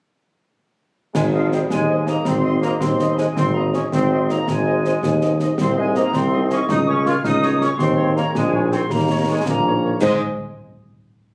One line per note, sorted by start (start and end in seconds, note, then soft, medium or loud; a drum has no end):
1.14 1.62 G#1 medium
1.14 1.23 G#3 medium
1.14 1.21 G#5 medium
1.14 concert bass drum medium
1.14 snare medium
1.14 crash soft
1.33 1.51 F3 medium
1.33 1.40 D#4 soft
1.33 1.40 G#4 medium
1.33 1.40 C5 medium
1.33 1.40 D#5 soft
1.33 1.51 F5 medium
1.52 1.71 G3 medium
1.52 1.59 D#4 medium
1.52 1.59 G#4 medium
1.52 1.59 C5 medium
1.52 1.59 D#5 medium
1.52 1.59 G5 medium
1.52 snare soft
1.69 2.17 D#2 medium
1.69 2.04 G#3 medium
1.69 2.05 G#5 medium
1.69 concert bass drum medium
1.69 snare medium
1.89 1.96 D#4 soft
1.89 1.96 G#4 medium
1.89 1.96 C5 medium
1.89 1.95 D#5 soft
2.07 2.26 A#3 medium
2.07 2.14 D#4 medium
2.07 2.14 G#4 medium
2.07 2.14 C5 medium
2.07 2.14 D#5 medium
2.07 2.26 A#5 medium
2.07 snare soft
2.25 2.72 G#1 medium
2.25 2.60 C4 medium
2.25 2.63 C6 medium
2.25 concert bass drum medium
2.25 snare medium
2.44 2.52 D#4 medium
2.44 2.52 G#4 medium
2.44 2.52 C5 medium
2.44 2.50 D#5 soft
2.61 2.79 A#3 medium
2.61 2.70 D#4 medium
2.61 2.69 G#4 medium
2.61 2.69 C5 medium
2.61 2.70 D#5 medium
2.61 2.69 A#5 medium
2.61 snare soft
2.80 3.27 D#2 medium
2.80 3.18 C4 medium
2.80 3.15 C6 medium
2.80 concert bass drum medium
2.80 snare medium
2.99 3.07 D#4 soft
2.99 3.06 G#4 soft
2.99 3.07 C5 medium
2.99 3.07 D#5 medium
2.99 snare soft
3.17 3.26 G#3 medium
3.17 3.25 D#4 medium
3.17 3.25 G#4 medium
3.17 3.25 C5 medium
3.17 3.26 D#5 medium
3.17 3.36 G#5 medium
3.17 snare medium
3.34 3.83 G#1 medium
3.34 3.53 C4 medium
3.34 3.54 C6 medium
3.34 concert bass drum medium
3.34 snare medium
3.54 3.73 A#3 medium
3.54 3.62 D#4 medium
3.54 3.62 G4 medium
3.54 3.61 C#5 medium
3.54 3.62 D#5 medium
3.54 3.73 A#5 medium
3.73 3.81 C#4 medium
3.73 3.80 D#4 medium
3.73 3.80 G4 medium
3.73 3.81 C#5 medium
3.73 3.81 D#5 medium
3.73 3.80 C#6 medium
3.73 snare soft
3.92 4.39 G#1 medium
3.92 4.27 C4 medium
3.92 4.27 C6 medium
3.92 concert bass drum medium
3.92 snare medium
4.11 4.18 D#4 medium
4.11 4.18 G4 medium
4.11 4.17 C#5 medium
4.11 4.18 D#5 medium
4.29 4.48 A#3 medium
4.29 4.36 D#4 medium
4.29 4.36 G4 medium
4.29 4.36 C#5 medium
4.29 4.35 D#5 medium
4.29 4.46 A#5 medium
4.29 snare soft
4.48 4.94 G#1 medium
4.48 5.40 G#3 medium
4.48 5.36 G#5 medium
4.48 concert bass drum medium
4.48 snare medium
4.66 4.73 D#4 medium
4.66 4.73 G#4 medium
4.66 4.73 C5 medium
4.66 4.73 D#5 medium
4.85 4.92 D#4 medium
4.85 4.92 G#4 medium
4.85 4.92 C5 medium
4.85 4.92 D#5 medium
4.85 snare soft
5.03 5.49 D#2 medium
5.03 concert bass drum medium
5.03 snare medium
5.21 5.29 D#4 medium
5.21 5.29 G#4 medium
5.21 5.29 C5 medium
5.21 5.29 D#5 soft
5.21 snare soft
5.40 5.48 D#4 medium
5.40 5.48 G#4 medium
5.40 5.48 C5 medium
5.40 5.47 D#5 medium
5.40 snare soft
5.58 6.05 C2 medium
5.58 5.75 C4 medium
5.58 5.76 C6 medium
5.58 concert bass drum medium
5.58 snare medium
5.58 crash soft
5.76 5.95 G#3 medium
5.76 5.84 D#4 medium
5.76 5.84 G#4 medium
5.76 5.84 C5 medium
5.76 5.83 D#5 medium
5.76 5.95 G#5 medium
5.95 6.13 A#3 loud
5.95 6.03 D#4 medium
5.95 6.03 G#4 medium
5.95 6.03 C5 medium
5.95 6.02 D#5 medium
5.95 6.14 A#5 medium
5.95 snare soft
6.12 6.60 C2 medium
6.12 6.50 C4 medium
6.12 6.51 C6 medium
6.12 concert bass drum medium
6.12 snare medium
6.32 6.40 D#4 medium
6.32 6.40 G#4 medium
6.32 6.40 C5 medium
6.32 6.39 D#5 medium
6.50 6.58 C#4 medium
6.50 6.58 D#4 medium
6.50 6.58 G#4 medium
6.50 6.58 C5 medium
6.50 6.58 D#5 medium
6.50 6.68 C#6 medium
6.50 snare soft
6.69 7.15 C#2 medium
6.69 6.77 D#4 loud
6.69 6.86 D#6 medium
6.69 concert bass drum medium
6.69 snare medium
6.87 7.05 C#4 loud
6.87 6.94 F4 medium
6.87 6.94 G#4 medium
6.87 6.95 A#4 medium
6.87 6.95 C#5 medium
6.87 7.06 C#6 medium
7.05 7.14 F4 loud
7.05 7.13 F4 medium
7.05 7.13 G#4 medium
7.05 7.13 A#4 medium
7.05 7.13 C#5 medium
7.05 7.25 F6 medium
7.05 snare medium
7.23 7.70 C#2 medium
7.23 7.58 D#4 loud
7.23 7.59 D#6 medium
7.23 concert bass drum medium
7.23 snare medium
7.42 7.49 F4 medium
7.42 7.50 G#4 medium
7.42 7.50 A#4 medium
7.42 7.49 C#5 medium
7.42 snare medium
7.60 7.69 C#4 medium
7.60 7.68 F4 medium
7.60 7.68 G#4 medium
7.60 7.68 A#4 medium
7.60 7.68 C#5 medium
7.60 7.80 C#6 medium
7.60 snare medium
7.77 8.26 D#2 medium
7.77 8.13 C4 medium
7.77 8.13 C6 medium
7.77 concert bass drum medium
7.77 snare medium
7.97 8.05 D#4 medium
7.97 8.05 G#4 medium
7.97 8.04 A#4 medium
7.97 8.04 C#5 medium
8.16 8.24 A#3 medium
8.16 8.23 D#4 medium
8.16 8.23 G#4 medium
8.16 8.23 A#4 medium
8.16 8.24 C#5 medium
8.16 8.33 A#5 medium
8.16 snare soft
8.34 8.81 A#1 medium
8.34 8.69 G#3 medium
8.34 8.69 G#5 medium
8.34 concert bass drum medium
8.34 snare medium
8.53 8.60 D#4 medium
8.53 8.60 G#4 medium
8.53 8.60 A#4 medium
8.53 8.60 C#5 medium
8.70 8.78 C4 medium
8.70 8.79 D#4 medium
8.70 8.79 G#4 medium
8.70 8.79 A#4 medium
8.70 8.78 C#5 medium
8.70 8.89 C6 medium
8.70 snare medium
8.90 9.37 D#2 medium
8.90 9.25 A#3 medium
8.90 9.28 A#5 medium
8.90 concert bass drum medium
8.90 snare medium
9.09 9.16 D#4 medium
9.09 9.16 G4 medium
9.09 9.16 A#4 medium
9.09 9.17 C#5 medium
9.28 9.45 G#3 medium
9.28 9.35 D#4 medium
9.28 9.35 G4 medium
9.28 9.35 A#4 medium
9.28 9.35 C#5 medium
9.28 9.47 G#5 medium
9.46 9.92 A#1 medium
9.46 9.97 A#3 medium
9.46 9.98 A#5 medium
9.46 concert bass drum medium
9.46 snare medium
9.65 9.71 D#4 medium
9.65 9.72 G4 soft
9.65 9.71 A#4 medium
9.65 9.72 C#5 soft
9.83 9.90 D#4 medium
9.83 9.90 G4 medium
9.83 9.90 A#4 medium
9.83 9.90 C#5 soft
10.00 10.17 G#2 medium
10.00 10.16 G#3 medium
10.00 10.17 D#4 medium
10.00 10.17 G#4 medium
10.00 10.17 C5 medium
10.00 10.18 D#5 medium
10.00 10.22 G#5 medium
10.00 concert bass drum medium
10.00 snare medium
10.00 crash medium